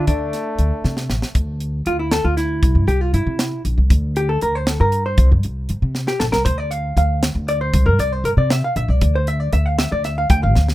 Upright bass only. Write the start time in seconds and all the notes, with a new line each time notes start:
0.08 D2
0.59 D2
0.85 C3
1.10 A1
1.35 D2
1.86 D2
2.25 D2
2.63 C2
2.75 G2
2.87 C2
3.13 G2
3.27 C3
3.65 A#1
3.78 C2
3.91 D2
4.42 D2
4.80 G2
5.18 C2
5.32 G2
5.44 C2
5.70 G2
5.82 C3
6.21 A#1
6.33 C2
6.46 D2
6.97 D2
7.35 D2
7.74 C2
7.86 G2
7.99 C2
8.24 G2
8.37 C3
8.76 A#1
8.88 C2
9.02 D2
9.53 D2
9.92 D2
10.30 D2
10.44 A1
10.56 D2